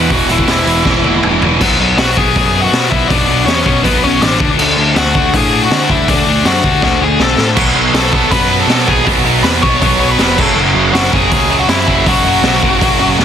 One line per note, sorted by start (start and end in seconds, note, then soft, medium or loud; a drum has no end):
0.00 0.47 E2 medium
0.00 0.47 B2 loud
0.00 0.10 E3 medium
0.00 0.12 B4 medium
0.10 0.26 E1 loud
0.10 0.28 E2 medium
0.10 0.28 B2 loud
0.10 0.29 E3 loud
0.10 0.30 F#4 loud
0.10 kick loud
0.10 open hi-hat medium
0.29 0.45 E1 medium
0.29 0.46 E2 medium
0.29 0.47 B2 medium
0.29 0.47 E3 loud
0.29 0.49 E4 loud
0.29 open hi-hat medium
0.38 kick medium
0.47 0.64 E1 medium
0.47 0.65 E2 loud
0.47 0.65 B2 loud
0.47 0.66 E3 loud
0.47 1.22 E4 loud
0.47 snare loud
0.47 open hi-hat medium
0.66 0.82 E1 medium
0.66 0.84 E2 medium
0.66 0.84 B2 medium
0.66 0.84 E3 medium
0.66 open hi-hat medium
0.85 1.01 E1 medium
0.85 1.03 E2 medium
0.85 1.03 B2 loud
0.85 1.04 E3 loud
0.85 kick loud
0.85 snare medium
1.04 1.20 E1 medium
1.04 1.21 E2 medium
1.04 1.21 B2 medium
1.04 1.22 E3 medium
1.04 high tom medium
1.22 1.39 E1 medium
1.22 1.40 E2 medium
1.22 1.40 B2 medium
1.22 1.41 E3 loud
1.22 mid tom medium
1.41 1.57 E1 medium
1.41 1.59 E2 medium
1.41 1.59 B2 loud
1.41 1.59 E3 medium
1.41 floor tom medium
1.61 1.77 B1 loud
1.61 1.79 B2 loud
1.61 1.80 F#3 loud
1.61 1.80 B3 loud
1.61 kick loud
1.61 crash loud
1.78 1.94 B1 medium
1.78 1.97 B2 medium
1.78 1.98 F#3 medium
1.78 1.98 B3 loud
1.97 2.13 B1 loud
1.97 2.16 B2 medium
1.97 2.17 F#3 loud
1.97 2.17 B3 loud
1.97 2.16 F#4 medium
1.97 2.17 F#5 loud
1.97 snare loud
1.97 open hi-hat medium
2.17 2.33 B1 medium
2.17 2.35 B2 medium
2.17 2.36 F#3 medium
2.17 2.36 B3 loud
2.17 2.61 G#4 medium
2.17 2.65 G#5 loud
2.17 kick medium
2.36 2.67 F#2 loud
2.36 2.54 B2 medium
2.36 2.55 F#3 medium
2.36 2.54 B3 loud
2.36 kick loud
2.36 open hi-hat medium
2.55 2.72 B2 medium
2.55 2.73 F#3 medium
2.55 2.73 B3 medium
2.61 2.89 F#4 medium
2.61 2.90 F#5 loud
2.72 2.88 B2 medium
2.72 2.89 B2 loud
2.72 2.91 F#3 loud
2.72 2.90 B3 loud
2.72 snare loud
2.72 open hi-hat medium
2.90 3.07 B1 medium
2.90 3.09 B2 medium
2.90 3.09 F#3 medium
2.90 3.09 B3 medium
2.90 3.10 E4 medium
2.90 3.10 E5 medium
2.90 kick medium
3.08 3.26 B1 loud
3.08 3.27 B2 loud
3.08 3.29 F#3 loud
3.08 3.28 B3 loud
3.08 3.45 D4 medium
3.08 3.45 D5 loud
3.08 kick loud
3.08 open hi-hat medium
3.27 3.44 B1 medium
3.27 3.46 B2 medium
3.27 3.47 F#3 medium
3.27 3.46 B3 loud
3.46 3.63 E2 loud
3.46 3.65 B2 loud
3.46 3.66 F#3 loud
3.46 3.65 B3 loud
3.46 3.83 C#4 medium
3.46 3.83 C#5 loud
3.46 snare loud
3.46 open hi-hat medium
3.66 3.82 B1 medium
3.66 3.83 B2 medium
3.66 3.84 F#3 loud
3.66 3.83 B3 loud
3.66 kick loud
3.83 4.00 B1 medium
3.83 4.01 B2 loud
3.83 4.02 F#3 loud
3.83 4.02 B3 loud
3.83 4.02 B3 medium
3.83 4.03 B4 medium
3.83 kick loud
3.83 open hi-hat medium
4.02 4.19 B1 loud
4.02 4.20 B2 medium
4.02 4.21 F#3 medium
4.02 4.21 B3 loud
4.02 4.21 C#4 medium
4.02 4.21 C#5 medium
4.21 4.38 A1 loud
4.21 4.39 B2 medium
4.21 4.40 F#3 loud
4.21 4.39 B3 loud
4.21 4.48 D4 medium
4.21 4.49 D5 medium
4.21 snare loud
4.21 open hi-hat medium
4.40 4.56 D2 medium
4.40 4.58 D3 loud
4.40 4.59 A3 loud
4.40 4.59 D4 loud
4.40 kick loud
4.58 4.74 D2 loud
4.58 4.76 D3 loud
4.58 4.77 A3 loud
4.58 4.77 D4 loud
4.58 crash loud
4.77 4.94 D2 medium
4.77 4.96 D3 medium
4.77 4.95 A3 loud
4.77 4.96 D4 loud
4.96 5.12 D2 loud
4.96 5.15 D3 loud
4.96 5.16 A3 loud
4.96 5.16 D4 loud
4.96 5.32 F#4 medium
4.96 5.35 F#5 loud
4.96 snare loud
4.96 open hi-hat medium
5.15 5.31 D2 medium
5.15 5.33 D3 medium
5.15 5.33 A3 loud
5.15 5.34 D4 loud
5.15 kick medium
5.33 5.65 A2 medium
5.33 5.51 D3 medium
5.33 5.52 A3 loud
5.33 5.52 D4 loud
5.33 5.61 G#4 medium
5.33 5.64 G#5 medium
5.33 kick loud
5.33 open hi-hat medium
5.52 5.70 D3 medium
5.52 5.70 A3 medium
5.52 5.71 D4 loud
5.63 5.89 F#4 medium
5.63 5.90 F#5 medium
5.71 5.87 D3 medium
5.71 5.88 D3 medium
5.71 5.89 A3 medium
5.71 5.89 D4 loud
5.71 snare loud
5.71 open hi-hat medium
5.89 6.05 D2 loud
5.89 6.06 D3 medium
5.89 6.06 A3 loud
5.89 6.06 D4 loud
5.89 6.08 E4 medium
5.89 6.09 E5 medium
5.89 kick medium
6.07 6.24 D2 loud
6.07 6.26 D3 loud
6.07 6.26 A3 loud
6.07 6.27 D4 loud
6.07 6.43 D4 medium
6.07 6.43 D5 loud
6.07 kick loud
6.07 open hi-hat medium
6.27 6.43 D2 medium
6.27 6.44 D3 medium
6.27 6.44 A3 loud
6.27 6.44 D4 medium
6.45 6.61 F#2 loud
6.45 6.63 D3 loud
6.45 6.63 A3 loud
6.45 6.64 D4 loud
6.45 6.80 F#4 medium
6.45 6.83 F#5 medium
6.45 snare loud
6.45 open hi-hat medium
6.64 6.80 D2 medium
6.64 6.81 D3 medium
6.64 6.82 A3 medium
6.64 6.82 D4 loud
6.64 kick loud
6.82 6.99 D2 medium
6.82 6.99 D3 loud
6.82 7.00 A3 loud
6.82 7.00 D4 loud
6.82 7.01 F#4 medium
6.82 7.03 F#5 loud
6.82 kick loud
6.82 snare medium
7.00 7.17 D2 loud
7.00 7.18 D3 medium
7.00 7.18 A3 medium
7.00 7.19 D4 loud
7.00 7.19 G#4 medium
7.00 7.22 G#5 medium
7.19 7.35 B1 medium
7.19 7.37 D3 loud
7.19 7.38 A3 loud
7.19 7.38 D4 loud
7.19 7.47 A4 medium
7.19 7.49 A5 loud
7.19 snare loud
7.38 7.54 A2 loud
7.38 7.56 D3 medium
7.38 7.56 A3 medium
7.38 7.56 D4 medium
7.38 snare loud
7.56 7.73 B1 medium
7.56 7.75 B2 loud
7.56 7.75 F#3 loud
7.56 7.76 B3 loud
7.56 kick loud
7.56 crash loud
7.75 7.91 B1 medium
7.75 7.94 B2 medium
7.75 7.95 F#3 loud
7.75 7.95 B3 loud
7.93 8.10 B1 loud
7.93 8.12 B2 loud
7.93 8.13 F#3 loud
7.93 8.13 B3 loud
7.93 8.12 A4 medium
7.93 8.14 A5 medium
7.93 snare loud
7.93 open hi-hat medium
8.12 8.29 B1 loud
8.12 8.30 B2 medium
8.12 8.32 F#3 medium
8.12 8.31 B3 loud
8.12 8.31 A4 medium
8.12 8.31 A5 loud
8.12 kick loud
8.31 8.64 F#2 medium
8.31 8.49 B2 medium
8.31 8.51 F#3 medium
8.31 8.50 B3 loud
8.31 8.58 B4 medium
8.31 8.58 B5 loud
8.31 kick loud
8.31 open hi-hat medium
8.51 8.68 B2 medium
8.51 8.69 F#3 medium
8.51 8.69 B3 loud
8.60 8.87 A4 medium
8.60 8.88 A5 loud
8.67 8.84 B2 medium
8.67 8.87 B2 medium
8.67 8.88 F#3 loud
8.67 8.88 B3 loud
8.67 snare loud
8.67 open hi-hat medium
8.88 9.04 B1 medium
8.88 9.05 B2 medium
8.88 9.07 F#3 loud
8.88 9.06 B3 loud
8.88 9.06 G#4 medium
8.88 9.06 G#5 medium
8.88 kick medium
9.07 9.23 B1 loud
9.07 9.24 B2 loud
9.07 9.25 F#3 loud
9.07 9.24 B3 loud
9.07 kick loud
9.07 open hi-hat medium
9.24 9.41 B1 medium
9.24 9.42 B2 medium
9.24 9.43 F#3 medium
9.24 9.43 B3 loud
9.42 9.59 E2 loud
9.42 9.61 B2 loud
9.42 9.62 F#3 loud
9.42 9.63 B3 loud
9.42 9.50 B4 medium
9.42 9.49 B5 loud
9.42 snare loud
9.42 open hi-hat medium
9.62 9.79 B1 loud
9.62 9.80 B2 medium
9.62 9.81 F#3 loud
9.62 9.81 B3 loud
9.62 10.07 C#5 medium
9.62 10.11 C#6 loud
9.62 kick medium
9.81 9.97 B1 loud
9.81 9.99 B2 loud
9.81 10.00 F#3 medium
9.81 10.00 B3 loud
9.81 kick loud
9.81 open hi-hat medium
9.99 10.15 B1 medium
9.99 10.19 B2 loud
9.99 10.20 F#3 medium
9.99 10.19 B3 loud
10.11 10.37 B4 medium
10.11 10.39 B5 medium
10.18 10.35 F1 loud
10.18 10.37 B2 loud
10.18 10.39 F#3 medium
10.18 10.37 B3 loud
10.18 snare loud
10.18 open hi-hat medium
10.38 10.54 F#1 loud
10.38 10.58 F#2 loud
10.38 10.58 C#3 loud
10.38 10.59 F#3 loud
10.38 10.56 A4 medium
10.38 10.57 A5 medium
10.38 kick loud
10.38 crash loud
10.54 10.72 F#1 loud
10.54 10.73 F#2 loud
10.54 10.73 C#3 loud
10.59 10.76 F#2 loud
10.59 10.76 C#3 loud
10.59 10.77 F#3 loud
10.75 10.91 F#1 medium
10.75 10.95 F#2 medium
10.75 10.95 C#3 medium
10.75 10.96 F#3 medium
10.93 11.09 F#1 loud
10.93 11.13 F#2 loud
10.93 11.11 C#3 loud
10.93 11.87 C#3 medium
10.93 11.14 F#3 loud
10.93 11.12 F#4 medium
10.93 11.11 F#5 loud
10.93 snare loud
10.93 open hi-hat medium
11.12 11.29 F#1 loud
11.12 11.31 F#2 loud
11.12 11.31 C#3 loud
11.12 11.32 F#3 loud
11.12 11.57 G#4 medium
11.12 11.61 G#5 loud
11.12 kick medium
11.31 11.63 C#2 medium
11.31 11.49 F#2 loud
11.31 11.50 C#3 loud
11.31 11.50 F#3 loud
11.31 kick loud
11.31 open hi-hat medium
11.51 11.67 F#2 medium
11.51 11.68 C#3 medium
11.51 11.68 F#3 loud
11.59 11.69 F#4 medium
11.59 11.68 F#5 loud
11.68 11.84 F#2 medium
11.68 11.86 F#2 medium
11.68 11.86 C#3 medium
11.68 11.87 F#3 loud
11.68 11.86 E4 medium
11.68 11.87 E5 loud
11.68 snare loud
11.68 open hi-hat medium
11.87 12.03 F#1 loud
11.87 12.04 F#2 medium
11.87 12.05 C#3 medium
11.87 12.06 F#3 medium
11.87 12.06 E4 medium
11.87 12.07 E5 medium
11.87 kick medium
12.06 12.22 F#1 loud
12.06 12.23 F#2 loud
12.06 12.24 C#3 loud
12.06 12.24 F#3 loud
12.06 13.15 F#4 medium
12.06 13.15 F#5 medium
12.06 kick loud
12.06 open hi-hat medium
12.25 12.41 F#1 medium
12.25 12.43 F#2 medium
12.25 12.44 C#3 loud
12.25 12.44 F#3 loud
12.43 12.59 B1 loud
12.43 12.62 F#2 loud
12.43 12.62 C#3 loud
12.43 12.63 F#3 loud
12.43 snare loud
12.43 open hi-hat medium
12.63 12.79 F#1 loud
12.63 12.80 F#2 medium
12.63 12.80 C#3 medium
12.63 12.81 F#3 medium
12.63 kick loud
12.81 12.97 F#1 medium
12.81 12.99 F#2 medium
12.81 12.99 C#3 loud
12.81 13.00 F#3 loud
12.81 kick loud
12.81 open hi-hat medium
13.00 13.16 F#1 loud
13.00 13.18 F#2 medium
13.00 13.18 C#3 loud
13.00 13.19 F#3 loud
13.18 13.25 E1 medium
13.18 13.25 F#2 loud
13.18 13.25 C#3 loud
13.18 13.25 F#3 loud
13.18 snare medium